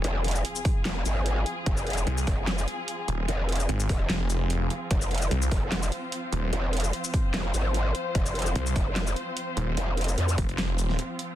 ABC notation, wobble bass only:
X:1
M:4/4
L:1/8
Q:"Swing 16ths" 1/4=148
K:Fm
V:1 name="Wobble bass" clef=bass
F,,,2 z2 F,,, A,,,2 z | F,,,2 z F,,,2 z3 | F,,,2 z E,,, z4 | F,,,2 z F,,,2 z3 |
F,,,2 z2 F,,, A,,,2 z | F,,,2 z F,,,2 z3 | F,,,2 F,, z4 z |]